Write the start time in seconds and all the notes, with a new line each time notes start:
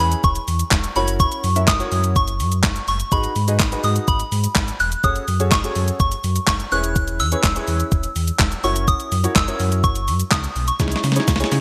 Already playing: C#4 E4 G#4 B4 C#5
0.00 E2 B5, open hi-hat, shaker
0.12 closed hi-hat, shaker
0.24 E1 C#6, kick, shaker
0.35 closed hi-hat, shaker
0.48 E2, open hi-hat, shaker
0.59 closed hi-hat, shaker
0.71 E1, kick, snare, clap, shaker
0.84 closed hi-hat, shaker
0.96 F#1 C#4 E4 F#4 A#4 C#5 B5, open hi-hat, shaker
1.08 closed hi-hat, shaker
1.20 C#6, kick, shaker
1.32 closed hi-hat, shaker
1.44 F#2, open hi-hat, shaker
1.56 C#4 E4 F#4 A#4 E5, closed hi-hat, shaker
1.68 F#1 D#6, kick, snare, clap, shaker
1.80 C#4 E4 F#4 A#4 C#5, closed hi-hat, shaker
1.92 F#2, open hi-hat, shaker
2.04 closed hi-hat, shaker
2.16 F#1 C#6, kick, shaker
2.28 closed hi-hat, shaker
2.40 F#2, open hi-hat, shaker
2.52 closed hi-hat, shaker
2.63 F#1, kick, snare, clap, shaker
2.76 closed hi-hat, shaker
2.88 F#1 C#6, open hi-hat, shaker
3.00 closed hi-hat, shaker
3.12 G#1 D#4 F#4 G#4 B4 D#5 B5, kick, shaker
3.24 closed hi-hat, shaker
3.36 G#2, open hi-hat, shaker
3.48 D#4 F#4 G#4 B4 D#5, closed hi-hat, shaker
3.59 G#1, kick, snare, clap, shaker
3.72 D#4 F#4 G#4 B4 D#5, closed hi-hat, shaker
3.84 G#2 D#6, open hi-hat, shaker
3.96 closed hi-hat, shaker
4.08 G#1 B5, kick, shaker
4.20 closed hi-hat, shaker
4.32 G#2, open hi-hat, shaker
4.44 closed hi-hat, shaker
4.55 G#1, kick, snare, clap, shaker
4.68 closed hi-hat, shaker
4.80 E1 F#6, open hi-hat, shaker
4.92 closed hi-hat, shaker
5.04 F#1 C#4 F#4 G#4 A4 C#5 D#6, kick, shaker
5.16 closed hi-hat, shaker
5.28 F#2, open hi-hat, shaker
5.40 C#4 F#4 G#4 A4 C#5, closed hi-hat, shaker
5.51 F#1 C#6, kick, snare, clap, shaker
5.64 C#4 F#4 G#4 A4 C#5, closed hi-hat, shaker
5.75 F#2, open hi-hat, shaker
5.88 closed hi-hat, shaker
6.00 F#1 C#6, kick, shaker
6.12 closed hi-hat, shaker
6.24 F#2, open hi-hat, shaker
6.36 closed hi-hat, shaker
6.47 F#1 C#6, kick, snare, clap, shaker
6.60 closed hi-hat, shaker
6.72 E1 C#4 E4 G#4 B4 C#5 F#6, open hi-hat, shaker
6.84 closed hi-hat, shaker
6.96 kick, shaker
7.08 closed hi-hat, shaker
7.20 E2 E6, open hi-hat, shaker
7.32 C#4 E4 G#4 B4 C#5, closed hi-hat, shaker
7.43 E1, kick, snare, clap, shaker
7.56 C#4 E4 G#4 B4 C#5, closed hi-hat, shaker
7.67 E2, open hi-hat, shaker
7.80 closed hi-hat, shaker
7.92 E1, kick, shaker
8.03 closed hi-hat, shaker
8.16 E2, open hi-hat, shaker
8.27 closed hi-hat, shaker
8.39 E1, kick, snare, clap, shaker
8.52 closed hi-hat, shaker
8.64 F#1 C#4 E4 F#4 A#4 C#5 C#6, open hi-hat, shaker
8.76 closed hi-hat, shaker
8.88 D#6, kick, shaker
9.00 closed hi-hat, shaker
9.12 F#2, open hi-hat, shaker
9.23 C#4 E4 F#4 A#4 C#5, closed hi-hat, shaker
9.36 F#1 E6, kick, snare, clap, shaker
9.48 C#4 E4 F#4 A#4 C#5, closed hi-hat, shaker
9.60 F#2, open hi-hat, shaker
9.72 closed hi-hat, shaker
9.84 F#1 C#6, kick, shaker
9.96 closed hi-hat, shaker
10.08 F#2, open hi-hat, shaker
10.20 closed hi-hat, shaker
10.31 C#2 D#6, kick, snare, clap, shaker
10.44 closed hi-hat, shaker
10.56 B1, open hi-hat, shaker
10.68 C#6, closed hi-hat, shaker
10.79 C#2 C#4 D#4 E4 G#4 C#5, kick, snare, shaker
10.88 snare, closed hi-hat, shaker
10.96 snare
11.04 C#3, snare, open hi-hat, shaker
11.12 C#4 D#4, snare
11.16 E4 G#4 C#5, snare, closed hi-hat, shaker
11.28 C#2, kick, snare, shaker
11.36 C#4, snare
11.40 D#4 E4 G#4 C#5, snare, closed hi-hat, shaker
11.52 C#3, snare, open hi-hat, shaker